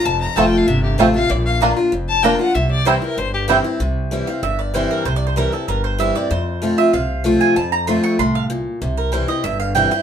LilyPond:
<<
  \new Staff \with { instrumentName = "Fiddle" } { \time 4/4 \key c \mixolydian \tempo 4 = 192 a''8 bes''8 \tuplet 3/2 { a''8 g''8 f''8 } e''8 g'8 c''8 f''8 | d''8 f''8 r4. a''8 g''8 fis''8 | e''8 d''8 c''8 bes'8 c''8 g'8 r4 | r1 |
r1 | r1 | r1 | r1 | }
  \new Staff \with { instrumentName = "Mandolin" } { \time 4/4 \key c \mixolydian r4 <c' f' c'' a''>8 r4. <c' f' c'' a''>8 r8 | r4 <bes f' d'' bes''>8 r4. <bes f' d'' bes''>8 r8 | r4 <c' e' c'' g''>8 r4. <c' e' c'' g''>8 r8 | r4. f''8 e''8 d''8 c''8 bes'8 |
\tuplet 3/2 { c''8 d''8 c''8 } bes'8 a'8 bes'8 c''8 e''8 d''8 | c''4. e''8 f''4 r8 aes''8 | a''8 bes''8 c'''8 des'''8 c'''8 f''8 r4 | r8 bes'8 c''8 ees''8 e''8 f''8 g''8 g''8 | }
  \new Staff \with { instrumentName = "Five-string banjo" } { \time 4/4 \key c \mixolydian r4 <a c' f'>8 r4. <a c' f'>8 r8 | r4 <bes d'>8 r4. <bes d'>8 r8 | r4 <g c' e'>8 r4. <g c' e'>8 r8 | r1 |
r1 | r1 | r1 | r1 | }
  \new Staff \with { instrumentName = "Steel-string acoustic guitar" } { \time 4/4 \key c \mixolydian << { r4 <f a c' f'>4 r4 <f a c' f'>8 <c' f'>8 | r4 <d bes d' f'>8 <d' f'>8 r4 <d bes d' f'>8 <d' f'>8 | r4 <e g c' e'>8 <c' e'>8 r4 <e g c' e'>8 <c' e'>8 | r4 <e g c' e'>8 <c' e'>8 r4 <e g c' e'>4 |
r4 <e g c' e'>8 <c' e'>8 r4 <e g c' e'>8 <c' e'>8 | r4 <f a c' f'>8 <c' f'>8 r4 <f a c' f'>4 | r4 <f a c' f'>4 r2 | r4 <e g c' e'>8 <c' e'>8 r4 <e g c' e'>8 <c' e'>8 | } \\ { f,2 c2 | bes,2 f,2 | c2 g,2 | c2 g,2 |
c2 g,2 | f,2 c2 | f,2 a,4 bes,4 | c2 g,2 | } >> }
  \new Staff \with { instrumentName = "Upright bass" } { \clef bass \time 4/4 \key c \mixolydian f,,4 f,,4 g,,4 a,,4 | bes,,2 f,,2 | c,2 g,,2 | c,2 g,,2 |
c,2 g,,2 | f,2 c,2 | f,2 c,2 | c,2 g,,2 | }
>>